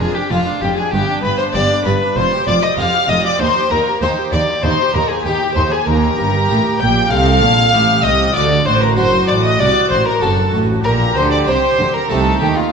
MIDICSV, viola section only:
0, 0, Header, 1, 2, 480
1, 0, Start_track
1, 0, Tempo, 617920
1, 722, Time_signature, 4, 2, 24, 8
1, 6483, Tempo, 625652
1, 9839, End_track
2, 0, Start_track
2, 0, Title_t, "Viola section"
2, 0, Program_c, 0, 48
2, 0, Note_on_c, 0, 65, 68
2, 120, Note_off_c, 0, 65, 0
2, 121, Note_on_c, 0, 62, 66
2, 242, Note_off_c, 0, 62, 0
2, 242, Note_on_c, 0, 65, 68
2, 354, Note_off_c, 0, 65, 0
2, 360, Note_on_c, 0, 62, 62
2, 480, Note_on_c, 0, 65, 63
2, 481, Note_off_c, 0, 62, 0
2, 600, Note_on_c, 0, 62, 62
2, 601, Note_off_c, 0, 65, 0
2, 720, Note_on_c, 0, 59, 71
2, 721, Note_off_c, 0, 62, 0
2, 832, Note_off_c, 0, 59, 0
2, 838, Note_on_c, 0, 62, 64
2, 959, Note_on_c, 0, 59, 70
2, 960, Note_off_c, 0, 62, 0
2, 1077, Note_on_c, 0, 62, 64
2, 1080, Note_off_c, 0, 59, 0
2, 1198, Note_on_c, 0, 59, 68
2, 1199, Note_off_c, 0, 62, 0
2, 1311, Note_off_c, 0, 59, 0
2, 1319, Note_on_c, 0, 62, 71
2, 1440, Note_off_c, 0, 62, 0
2, 1441, Note_on_c, 0, 59, 65
2, 1562, Note_off_c, 0, 59, 0
2, 1562, Note_on_c, 0, 62, 61
2, 1682, Note_off_c, 0, 62, 0
2, 1686, Note_on_c, 0, 65, 77
2, 1796, Note_off_c, 0, 65, 0
2, 1803, Note_on_c, 0, 67, 70
2, 1920, Note_on_c, 0, 65, 77
2, 1923, Note_off_c, 0, 67, 0
2, 2042, Note_off_c, 0, 65, 0
2, 2043, Note_on_c, 0, 67, 68
2, 2161, Note_on_c, 0, 65, 67
2, 2163, Note_off_c, 0, 67, 0
2, 2274, Note_off_c, 0, 65, 0
2, 2284, Note_on_c, 0, 67, 64
2, 2403, Note_off_c, 0, 67, 0
2, 2409, Note_on_c, 0, 65, 65
2, 2526, Note_off_c, 0, 65, 0
2, 2526, Note_on_c, 0, 67, 69
2, 2644, Note_off_c, 0, 67, 0
2, 2644, Note_on_c, 0, 63, 78
2, 2756, Note_off_c, 0, 63, 0
2, 2766, Note_on_c, 0, 67, 69
2, 2885, Note_off_c, 0, 67, 0
2, 2885, Note_on_c, 0, 63, 69
2, 3004, Note_off_c, 0, 63, 0
2, 3008, Note_on_c, 0, 67, 65
2, 3123, Note_on_c, 0, 63, 69
2, 3126, Note_off_c, 0, 67, 0
2, 3235, Note_off_c, 0, 63, 0
2, 3247, Note_on_c, 0, 67, 68
2, 3365, Note_off_c, 0, 67, 0
2, 3365, Note_on_c, 0, 63, 65
2, 3482, Note_on_c, 0, 67, 65
2, 3483, Note_off_c, 0, 63, 0
2, 3602, Note_off_c, 0, 67, 0
2, 3604, Note_on_c, 0, 63, 79
2, 3715, Note_off_c, 0, 63, 0
2, 3726, Note_on_c, 0, 67, 71
2, 3844, Note_off_c, 0, 67, 0
2, 3848, Note_on_c, 0, 63, 74
2, 3966, Note_off_c, 0, 63, 0
2, 3966, Note_on_c, 0, 67, 67
2, 4084, Note_off_c, 0, 67, 0
2, 4084, Note_on_c, 0, 63, 73
2, 4194, Note_off_c, 0, 63, 0
2, 4203, Note_on_c, 0, 67, 69
2, 4321, Note_on_c, 0, 63, 67
2, 4322, Note_off_c, 0, 67, 0
2, 4440, Note_on_c, 0, 67, 62
2, 4441, Note_off_c, 0, 63, 0
2, 4549, Note_off_c, 0, 67, 0
2, 4558, Note_on_c, 0, 67, 78
2, 5493, Note_off_c, 0, 67, 0
2, 5518, Note_on_c, 0, 69, 84
2, 6000, Note_on_c, 0, 67, 72
2, 6001, Note_off_c, 0, 69, 0
2, 6484, Note_off_c, 0, 67, 0
2, 6484, Note_on_c, 0, 66, 85
2, 7422, Note_off_c, 0, 66, 0
2, 7439, Note_on_c, 0, 66, 86
2, 7911, Note_off_c, 0, 66, 0
2, 7920, Note_on_c, 0, 66, 76
2, 8392, Note_off_c, 0, 66, 0
2, 8399, Note_on_c, 0, 67, 80
2, 9361, Note_off_c, 0, 67, 0
2, 9364, Note_on_c, 0, 63, 79
2, 9837, Note_off_c, 0, 63, 0
2, 9839, End_track
0, 0, End_of_file